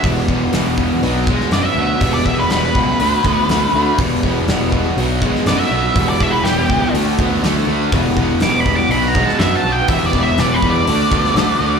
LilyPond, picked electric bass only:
\new Staff \with { instrumentName = "Picked electric bass" } { \clef bass \time 4/4 \key e \minor \tempo 4 = 122 e,,8 e,,8 e,,4 b,,4 fis,8 d,8 | e,,8 e,,8 e,,8 cis,8 d,8 d,8 d,8 d,8 | e,,8 e,,8 e,,4 b,,4 fis,8 b,,8 | e,,8 e,,8 e,,8 cis,8 d,8 d,8 d,8 d,8 |
e,,8 e,,8 e,,4 b,,4 fis,8 b,,8 | e,,8 e,,8 e,,8 e,8 d,8 d,8 d,8 d,8 | }